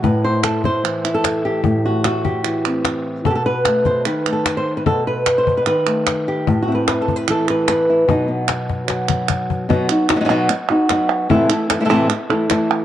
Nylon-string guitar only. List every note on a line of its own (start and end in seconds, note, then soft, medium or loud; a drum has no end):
0.00 1.62 A2 medium
0.00 2.28 A3 soft
0.00 0.24 B4 loud
0.24 0.43 C5 medium
0.44 0.64 A4 medium
0.65 1.14 C5 medium
0.84 2.44 E3 medium
1.04 1.44 E4 soft
1.14 1.85 A4 medium
1.45 2.23 G4 medium
1.64 3.23 A2 medium
1.85 2.04 F#4 medium
2.05 2.65 F#4 medium
2.25 3.25 G4 medium
2.45 3.25 E3 medium
2.66 3.23 C4 soft
3.25 4.06 B2 medium
3.25 3.34 A4 medium
3.30 3.35 G4 medium
3.35 3.45 A4 loud
3.46 3.86 B4 medium
3.67 4.26 A3 soft
3.86 4.06 C5 medium
4.05 4.84 D#3 medium
4.05 4.32 B4 medium
4.26 5.85 A3 soft
4.33 4.46 A4 medium
4.46 4.56 B4 medium
4.57 4.77 C5 medium
4.77 4.86 B4 medium
4.86 5.67 B2 medium
4.86 5.06 A4 medium
5.07 5.37 B4 medium
5.38 5.57 C5 medium
5.57 5.65 B4 medium
5.67 6.45 D#3 medium
5.67 6.47 B4 medium
5.87 6.67 A3 soft
6.28 6.68 G4 medium
6.47 8.06 A2 medium
6.62 6.74 F#4 medium
6.68 8.06 C4 soft
6.68 7.89 E4 soft
6.75 6.87 B4 medium
6.88 7.01 B4 medium
7.02 7.16 A4 medium
7.16 7.29 B4 medium
7.28 8.08 E3 medium
7.28 7.49 A4 medium
7.50 7.68 B4 medium
7.69 8.09 B4 medium
7.90 8.09 E4 medium
8.08 9.68 B2 medium
8.08 8.87 F#3 soft
8.08 8.27 B3 soft
8.08 9.69 D#4 medium
8.28 8.47 B3 soft
8.49 9.09 B3 soft
8.88 9.67 F#3 medium
9.10 9.67 B3 soft
9.69 9.89 B2 medium
9.69 9.89 F#3 medium
9.69 9.89 B3 medium
9.69 9.89 D#4 medium
9.69 9.88 F#4 medium
9.89 10.09 B3 soft
9.89 10.08 D#4 soft
9.89 10.08 F#4 medium
10.09 10.15 B3 soft
10.09 10.16 D#4 soft
10.09 10.16 F#4 medium
10.16 10.19 F#3 medium
10.16 10.20 B3 medium
10.16 10.20 D#4 medium
10.16 10.20 F#4 medium
10.21 10.24 F#3 medium
10.21 10.24 B3 medium
10.21 10.25 D#4 medium
10.21 10.25 F#4 medium
10.25 10.28 F#3 medium
10.25 10.29 B3 medium
10.25 10.29 D#4 medium
10.25 10.30 F#4 medium
10.29 10.49 B2 medium
10.29 10.49 F#3 medium
10.29 10.49 B3 medium
10.29 10.49 D#4 medium
10.29 10.50 F#4 medium
10.50 muted nylon-string guitar stroke medium
10.70 10.89 B3 soft
10.70 10.89 D#4 medium
10.70 10.89 F#4 medium
10.89 11.29 F#3 medium
10.89 11.29 B3 medium
10.89 11.30 D#4 medium
10.89 11.30 F#4 medium
11.29 11.49 A2 medium
11.29 11.49 C3 medium
11.29 11.49 E3 medium
11.29 11.49 A3 medium
11.29 11.49 E4 loud
11.29 11.48 A4 medium
11.49 11.70 E3 soft
11.49 11.70 A3 soft
11.49 11.69 E4 medium
11.49 11.69 A4 medium
11.70 11.79 E3 soft
11.70 11.79 A3 soft
11.70 11.80 E4 soft
11.70 11.81 A4 medium
11.80 11.84 C3 medium
11.80 11.84 E3 medium
11.80 11.84 A3 medium
11.80 11.84 E4 medium
11.80 11.85 A4 medium
11.85 11.88 C3 medium
11.85 11.89 E3 medium
11.85 11.89 A3 medium
11.85 11.89 E4 medium
11.85 11.89 A4 medium
11.89 12.09 A2 medium
11.89 12.09 C3 medium
11.89 12.09 E3 medium
11.89 12.09 A3 medium
11.89 12.09 E4 medium
11.89 12.09 A4 loud
12.10 muted nylon-string guitar stroke medium
12.30 12.48 E3 soft
12.30 12.49 A3 medium
12.30 12.50 E4 medium
12.30 12.49 A4 medium
12.49 12.85 E3 medium
12.49 12.85 A3 medium
12.49 12.85 E4 medium
12.49 12.85 A4 medium